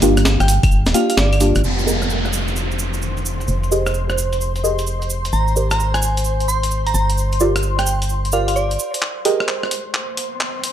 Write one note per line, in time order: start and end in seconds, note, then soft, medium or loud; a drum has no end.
0.00 0.37 G1 medium
0.00 1.65 G3 medium
0.00 0.13 A#3 medium
0.00 0.13 D4 medium
0.00 0.13 F4 medium
0.00 0.13 G4 loud
0.00 1.65 F5 medium
0.00 open hi-hat loud
0.00 cabasa medium
0.17 cross-stick medium
0.17 closed hi-hat medium
0.17 cabasa soft
0.25 snare loud
0.25 cabasa soft
0.40 0.59 G1 medium
0.40 0.52 G5 medium
0.40 cross-stick medium
0.40 closed hi-hat soft
0.40 cabasa soft
0.48 open hi-hat loud
0.48 cabasa medium
0.63 0.88 G1 medium
0.63 kick loud
0.63 closed hi-hat medium
0.63 cabasa soft
0.63 claves medium
0.71 cabasa soft
0.86 0.93 D1 medium
0.86 snare medium
0.86 closed hi-hat medium
0.86 cabasa soft
0.94 1.39 A#3 medium
0.94 1.39 D4 medium
0.94 1.39 F4 medium
0.94 1.39 G4 medium
0.94 1.04 F5 medium
0.94 open hi-hat loud
0.94 cabasa medium
1.10 1.15 F5 medium
1.10 closed hi-hat medium
1.10 cabasa soft
1.17 1.53 G1 loud
1.17 1.64 D5 medium
1.17 snare loud
1.17 cabasa soft
1.33 closed hi-hat medium
1.33 cabasa soft
1.33 claves medium
1.40 1.51 A#3 loud
1.40 1.51 D4 medium
1.40 1.51 F4 medium
1.40 1.51 G4 loud
1.40 open hi-hat loud
1.40 cabasa medium
1.55 1.63 G1 medium
1.55 cross-stick medium
1.55 closed hi-hat medium
1.55 cabasa soft
1.64 3.47 F1 medium
1.64 9.01 C5 medium
1.64 9.01 C6 medium
1.64 crash medium
1.64 downlifter medium
1.64 cabasa soft
1.79 cabasa soft
1.87 2.03 G4 medium
1.87 2.03 G#4 medium
1.87 2.03 A#4 medium
1.87 2.03 D#5 loud
1.87 cabasa medium
2.02 cross-stick medium
2.02 closed hi-hat medium
2.02 cabasa soft
2.10 cabasa soft
2.25 cross-stick medium
2.25 closed hi-hat soft
2.25 cabasa soft
2.33 cabasa medium
2.48 closed hi-hat medium
2.48 cabasa soft
2.56 cabasa soft
2.71 closed hi-hat soft
2.71 cabasa soft
2.79 cabasa medium
2.94 closed hi-hat medium
2.94 cabasa soft
3.02 cabasa soft
3.17 closed hi-hat medium
3.17 cabasa soft
3.25 cabasa medium
3.40 closed hi-hat medium
3.40 cabasa soft
3.48 5.31 F1 medium
3.48 cabasa medium
3.63 closed hi-hat soft
3.63 cabasa soft
3.71 3.82 G4 medium
3.71 3.82 G#4 medium
3.71 3.82 A#4 medium
3.71 3.82 D#5 medium
3.71 cabasa medium
3.86 cross-stick medium
3.86 closed hi-hat medium
3.86 cabasa soft
3.94 cabasa soft
4.10 cross-stick medium
4.10 closed hi-hat soft
4.10 cabasa soft
4.18 cabasa medium
4.33 closed hi-hat medium
4.33 cabasa soft
4.41 cabasa medium
4.56 closed hi-hat soft
4.56 cabasa soft
4.64 4.80 G4 medium
4.64 4.80 G#4 medium
4.64 4.80 A#4 medium
4.64 4.80 D#5 loud
4.64 cabasa medium
4.78 closed hi-hat medium
4.78 cabasa soft
4.87 cabasa medium
5.02 closed hi-hat soft
5.02 cabasa soft
5.10 cabasa medium
5.25 closed hi-hat medium
5.25 cabasa soft
5.33 6.93 G#1 medium
5.33 5.50 A#5 medium
5.33 cabasa soft
5.48 cabasa soft
5.56 5.72 G4 medium
5.56 5.72 A#4 medium
5.56 5.72 C5 medium
5.56 5.72 D5 medium
5.56 cabasa medium
5.71 5.83 A#5 medium
5.71 cross-stick medium
5.71 closed hi-hat medium
5.71 cabasa soft
5.80 cabasa medium
5.94 6.40 G#5 medium
5.94 cross-stick medium
5.94 closed hi-hat soft
5.94 cabasa soft
6.02 cabasa medium
6.17 closed hi-hat medium
6.17 cabasa soft
6.24 cabasa medium
6.40 closed hi-hat soft
6.40 cabasa soft
6.48 6.65 C6 medium
6.48 cabasa loud
6.63 closed hi-hat medium
6.63 cabasa soft
6.71 cabasa medium
6.87 6.93 A#5 medium
6.87 closed hi-hat soft
6.87 cabasa soft
6.94 8.78 G1 medium
6.94 7.11 A#5 medium
6.94 cabasa medium
7.10 closed hi-hat medium
7.10 cabasa soft
7.18 cabasa soft
7.32 closed hi-hat soft
7.32 cabasa soft
7.40 7.51 F4 medium
7.40 7.51 G4 medium
7.40 7.51 A#4 medium
7.40 7.51 D5 medium
7.40 cabasa medium
7.56 cross-stick medium
7.56 closed hi-hat medium
7.56 cabasa soft
7.63 cabasa medium
7.79 7.90 G5 medium
7.79 cross-stick medium
7.79 closed hi-hat soft
7.79 cabasa soft
7.86 cabasa medium
8.02 closed hi-hat medium
8.02 cabasa soft
8.09 cabasa medium
8.25 closed hi-hat soft
8.25 cabasa soft
8.32 8.49 F4 medium
8.32 8.49 G4 medium
8.32 8.49 A#4 medium
8.32 8.49 D5 medium
8.32 8.43 F5 medium
8.32 cabasa medium
8.48 8.53 F5 medium
8.48 closed hi-hat medium
8.48 cabasa soft
8.56 9.02 D5 medium
8.56 cabasa medium
8.71 closed hi-hat medium
8.71 cabasa soft
8.79 cabasa loud
8.94 closed hi-hat medium
8.94 cabasa soft
9.02 10.72 C5 medium
9.02 10.72 C6 medium
9.02 clap soft
9.02 riser medium
9.25 9.41 G4 medium
9.25 9.41 G#4 medium
9.25 9.41 A#4 medium
9.25 9.41 D#5 loud
9.25 open hi-hat loud
9.40 cross-stick medium
9.48 clap soft
9.63 cross-stick medium
9.71 open hi-hat loud
9.94 clap soft
10.17 open hi-hat loud
10.40 clap medium
10.64 open hi-hat loud